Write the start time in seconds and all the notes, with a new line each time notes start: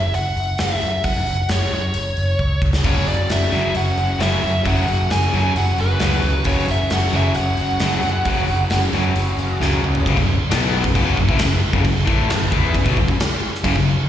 Already playing: E5
0.14 F#1 F#5, open hi-hat
0.36 F#1, open hi-hat
0.58 F#1 E5, snare, open hi-hat
0.81 F#2, open hi-hat
1.04 F#2 F#5, kick, open hi-hat
1.27 F#1, open hi-hat
1.49 F#1 C#5, snare, open hi-hat
1.71 F#2 C#5, open hi-hat
1.94 F#1, open hi-hat
2.17 F#1, open hi-hat
2.39 C#2, kick
2.62 C#2, kick
2.73 snare
2.84 F#1 F#2 C#3 F#3 C#5, kick, open hi-hat, splash
3.07 F#1 F#2 C#3 F#3 D5, open hi-hat
3.29 F#1 F#2 C#3 F#3 E5, snare, open hi-hat
3.52 F#1 F#2 C#3 F#3, open hi-hat
3.75 F#1 F#2 C#3 F#3 F#5, open hi-hat
3.97 F#1 F#2 C#3 F#3, open hi-hat
4.19 F#1 F#2 C#3 F#3 E5, snare, open hi-hat
4.42 F#2 C#3 F#3, open hi-hat
4.65 F#2 C#3 F#3 F#5, kick, open hi-hat
4.86 F#1 F#2 C#3 F#3, open hi-hat
5.10 F#1 F#2 C#3 F#3 G#5, snare, open hi-hat
5.33 F#2 C#3 F#3, open hi-hat
5.56 F#1 F#2 C#3 F#3 F#5, open hi-hat
5.78 F#1 F#2 C#3 F#3 B4, open hi-hat
6.00 C#2 F#2 C#3 F#3, snare, open hi-hat
6.22 C#2 F#2 C#3 F#3, open hi-hat
6.44 F#1 F#2 C#3 F#3 C#5, kick, open hi-hat
6.68 F#1 F#2 C#3 F#3 E5, open hi-hat
6.90 F#1 F#2 C#3 F#3 F#5, snare, open hi-hat
7.13 F#1 F#2 C#3 F#3 E5, open hi-hat
7.34 F#1 F#2 C#3 F#3 F#5, open hi-hat
7.57 F#1 F#2 C#3 F#3, open hi-hat
7.80 F#1 F#2 C#3 F#3, snare, open hi-hat
8.03 F#2 C#3 F#3, open hi-hat
8.25 F#2 C#3 F#3, kick, open hi-hat
8.48 F#1 F#2 C#3 F#3, open hi-hat
8.70 F#1 F#2 C#3 F#3, snare, open hi-hat
8.91 F#2 C#3 F#3, open hi-hat
9.15 F#1 F#2 C#3 F#3, open hi-hat
9.37 F#1 F#2 C#3 F#3, open hi-hat
9.60 C#2 F#2 C#3 F#3, snare
9.73 high tom
9.82 C#2 F#2 C#3 F#3, mid tom
9.95 floor tom
10.05 F#1 F#2 C#3, kick, crash
10.17 F#1 F#2 C#3, kick
10.49 B1 B2 F#3 B3, snare, crash
10.84 F#1 F#2 C#3, kick
10.95 F#1 F#2 C#3 F#3, kick, crash
11.17 F#1 F#2 C#3, kick
11.28 A1 A2 E3, kick
11.39 F#1 F#2 C#3, snare, crash
11.73 F#1 F#2 C#3, kick
11.85 F#1 F#2 C#3, kick, crash
12.07 A1 A2 E3 A3, kick
12.30 F#1 F#2 C#3, snare, crash
12.52 E2 E3 B3 E4, kick
12.74 F#1 F#2 C#3, kick, crash
12.86 B1 B2 F#3, kick
12.97 F#1 F#2 C#3, kick
13.08 F#1 F#2 C#3, kick
13.20 snare, crash
13.55 snare
13.64 F#1 F#2 C#3, kick, crash
13.75 F#1 F#2 C#3, kick